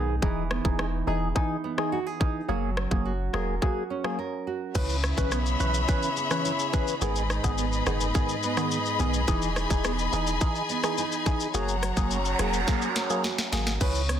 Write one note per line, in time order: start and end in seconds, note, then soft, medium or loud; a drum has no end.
0.00 0.19 B1 medium
0.00 0.22 G#2 medium
0.00 0.15 D#3 medium
0.00 0.15 B3 medium
0.00 0.50 B3 medium
0.00 0.79 D#4 medium
0.00 0.16 G#4 medium
0.00 1.07 G#4 medium
0.22 0.60 E1 loud
0.22 0.43 E3 medium
0.22 2.48 E3 medium
0.22 0.44 D#4 medium
0.22 0.44 G#4 loud
0.22 kick loud
0.51 1.63 B3 medium
0.51 cross-stick medium
0.64 1.03 E1 loud
0.64 0.86 E3 medium
0.64 0.86 D#4 medium
0.64 0.86 G#4 medium
0.64 kick medium
0.79 1.35 D#4 medium
0.79 cross-stick medium
1.07 1.33 E1 medium
1.07 1.28 E3 medium
1.07 1.29 D#4 medium
1.07 1.92 G#4 medium
1.07 1.29 G#4 medium
1.35 1.57 E3 medium
1.35 1.57 D#4 medium
1.35 2.19 D#4 medium
1.35 1.57 G#4 loud
1.35 kick loud
1.64 2.55 B3 medium
1.78 1.99 E3 medium
1.78 1.99 D#4 medium
1.78 1.99 G#4 medium
1.78 cross-stick medium
1.92 2.06 F#4 medium
2.06 2.55 G#4 medium
2.20 2.42 E3 medium
2.20 2.42 D#4 medium
2.20 2.55 D#4 medium
2.20 2.42 G#4 medium
2.20 kick medium
2.48 2.87 F#1 loud
2.48 2.70 F#3 medium
2.48 4.75 F#3 medium
2.48 2.70 A#3 medium
2.48 2.70 G#4 loud
2.77 3.90 C#4 medium
2.77 cross-stick medium
2.91 3.29 F#1 medium
2.91 3.12 F#3 medium
2.91 3.12 A#3 medium
2.91 3.13 G#4 medium
2.91 kick medium
3.06 3.61 F#4 medium
3.33 3.59 E1 loud
3.33 3.55 F#3 medium
3.33 3.55 A#3 medium
3.33 3.55 G#4 medium
3.33 4.17 A#4 medium
3.33 cross-stick medium
3.62 3.83 F#3 medium
3.62 3.83 A#3 medium
3.62 4.46 F#4 medium
3.62 3.83 G#4 loud
3.62 kick loud
3.90 5.32 C#4 medium
4.04 4.18 F#3 medium
4.04 4.19 A#3 medium
4.04 4.19 G#4 medium
4.04 cross-stick medium
4.19 4.81 A#4 medium
4.47 4.81 F#4 medium
4.75 5.13 C#2 loud
4.75 7.02 C#3 medium
4.75 4.96 E3 medium
4.75 4.96 C#4 medium
4.75 13.77 G#4 medium
4.75 4.97 B4 loud
4.75 6.99 C#5 medium
4.75 6.99 E5 medium
4.75 6.99 B5 medium
4.75 kick loud
4.75 crash medium
4.75 shaker medium
4.89 shaker medium
5.04 5.59 E4 medium
5.04 cross-stick loud
5.04 shaker medium
5.17 5.56 B1 medium
5.17 5.39 E3 medium
5.17 5.39 C#4 medium
5.17 5.39 B4 medium
5.17 kick loud
5.17 shaker medium
5.32 6.17 B3 medium
5.32 cross-stick medium
5.32 shaker medium
5.46 shaker soft
5.60 5.85 B1 medium
5.60 5.81 E3 medium
5.60 5.81 C#4 medium
5.60 6.44 E4 medium
5.60 5.81 B4 medium
5.60 shaker medium
5.74 shaker medium
5.88 6.09 E3 medium
5.88 6.10 C#4 medium
5.88 6.73 G#4 medium
5.88 6.10 B4 loud
5.88 kick loud
5.88 shaker medium
6.03 shaker medium
6.17 7.58 B3 medium
6.17 shaker medium
6.31 6.52 E3 medium
6.31 6.52 C#4 medium
6.31 6.52 B4 medium
6.31 cross-stick medium
6.31 shaker medium
6.45 7.07 E4 medium
6.45 shaker medium
6.59 shaker soft
6.73 6.94 E3 medium
6.73 6.95 C#4 medium
6.73 8.14 G#4 medium
6.73 6.95 B4 medium
6.73 kick medium
6.73 shaker medium
6.88 shaker medium
7.01 7.40 G#1 loud
7.01 9.28 G#2 medium
7.01 7.23 D#3 medium
7.01 7.23 B3 medium
7.01 7.23 G#4 loud
7.01 9.26 B4 medium
7.01 11.50 D#5 medium
7.01 11.50 B5 medium
7.01 shaker medium
7.16 shaker medium
7.30 7.86 D#4 medium
7.30 cross-stick medium
7.30 shaker medium
7.44 7.82 G#1 loud
7.44 7.65 D#3 medium
7.44 7.65 B3 medium
7.44 7.65 G#4 medium
7.44 kick medium
7.44 shaker medium
7.58 8.43 B3 medium
7.58 shaker medium
7.73 shaker soft
7.86 8.12 F#1 medium
7.86 8.08 D#3 medium
7.86 8.08 B3 medium
7.86 8.71 D#4 medium
7.86 8.08 G#4 medium
7.86 cross-stick medium
7.86 shaker medium
8.01 shaker medium
8.14 8.36 D#3 medium
8.14 8.36 B3 medium
8.14 8.99 G#4 medium
8.14 8.36 G#4 loud
8.14 kick loud
8.14 shaker medium
8.29 shaker soft
8.43 9.84 B3 medium
8.43 shaker medium
8.57 8.78 D#3 medium
8.57 8.79 B3 medium
8.57 8.79 G#4 medium
8.57 cross-stick medium
8.57 shaker medium
8.71 9.56 D#4 medium
8.71 shaker medium
8.86 shaker soft
8.99 9.25 B1 medium
8.99 9.21 D#3 medium
8.99 9.21 B3 medium
8.99 10.41 G#4 medium
8.99 9.21 G#4 medium
8.99 shaker medium
9.14 shaker medium
9.28 9.66 E1 loud
9.28 9.49 E3 medium
9.28 11.54 E3 medium
9.28 9.49 D#4 medium
9.28 9.49 G#4 loud
9.28 11.52 G#5 medium
9.28 kick loud
9.28 shaker medium
9.42 shaker medium
9.56 10.12 D#4 medium
9.56 cross-stick medium
9.56 shaker medium
9.70 10.08 E1 loud
9.70 9.92 E3 medium
9.70 9.92 D#4 medium
9.70 9.92 G#4 medium
9.70 kick medium
9.70 shaker medium
9.84 10.68 B3 medium
9.84 cross-stick loud
9.84 shaker medium
9.99 shaker soft
10.13 10.38 E1 loud
10.13 10.34 E3 medium
10.13 10.34 D#4 medium
10.13 10.97 D#4 medium
10.13 10.34 G#4 medium
10.13 shaker medium
10.27 shaker medium
10.41 10.62 E3 medium
10.41 10.62 D#4 medium
10.41 11.26 G#4 medium
10.41 10.63 G#4 loud
10.41 kick loud
10.41 shaker medium
10.55 shaker soft
10.69 11.60 B3 medium
10.69 shaker medium
10.83 11.05 E3 medium
10.83 11.05 D#4 medium
10.83 11.05 G#4 medium
10.83 cross-stick medium
10.83 shaker medium
10.98 11.60 D#4 medium
10.98 shaker medium
11.12 shaker medium
11.26 11.47 E3 medium
11.26 11.47 D#4 medium
11.26 11.86 G#4 medium
11.26 11.48 G#4 medium
11.26 kick medium
11.26 shaker medium
11.40 shaker medium
11.54 11.92 F#1 loud
11.54 11.76 F#3 medium
11.54 13.81 F#3 medium
11.54 11.76 A#3 medium
11.54 11.76 G#4 loud
11.54 13.79 C#5 medium
11.54 13.79 F#5 medium
11.54 13.79 A#5 medium
11.54 noise sweep medium
11.54 shaker medium
11.69 shaker medium
11.83 12.38 F#4 medium
11.83 cross-stick loud
11.83 closed hi-hat medium
11.83 shaker medium
11.97 12.35 F#1 medium
11.97 12.18 F#3 medium
11.97 12.18 A#3 medium
11.97 12.18 G#4 medium
11.97 kick medium
11.97 shaker medium
12.11 12.96 C#4 medium
12.11 shaker medium
12.25 shaker soft
12.39 12.65 E1 loud
12.39 12.60 F#3 medium
12.39 12.61 A#3 medium
12.39 13.23 F#4 medium
12.39 12.61 G#4 medium
12.39 cross-stick medium
12.39 closed hi-hat medium
12.39 shaker medium
12.53 shaker medium
12.67 12.89 F#3 medium
12.67 12.89 A#3 medium
12.67 12.89 G#4 loud
12.67 13.51 A#4 medium
12.67 kick loud
12.67 snare medium
12.67 shaker medium
12.82 shaker soft
12.96 14.09 C#4 medium
12.96 snare medium
12.96 closed hi-hat medium
12.96 shaker soft
13.10 13.31 F#3 medium
13.10 13.31 A#3 medium
13.10 13.32 G#4 medium
13.10 shaker medium
13.24 13.87 F#4 medium
13.24 snare medium
13.24 shaker medium
13.38 snare medium
13.38 shaker soft
13.52 13.78 G#1 medium
13.52 13.74 F#3 medium
13.52 13.74 A#3 medium
13.52 13.74 G#4 medium
13.52 13.81 A#4 medium
13.52 snare loud
13.52 closed hi-hat medium
13.52 shaker medium
13.67 snare medium
13.67 shaker medium
13.81 14.19 C#2 loud
13.81 14.20 C#3 medium
13.81 14.02 E3 medium
13.81 14.02 C#4 medium
13.81 14.20 G#4 medium
13.81 14.02 B4 loud
13.81 kick loud
13.81 crash loud
13.81 shaker medium
13.95 shaker medium
14.09 14.20 B3 medium
14.09 cross-stick loud
14.09 closed hi-hat medium
14.09 shaker medium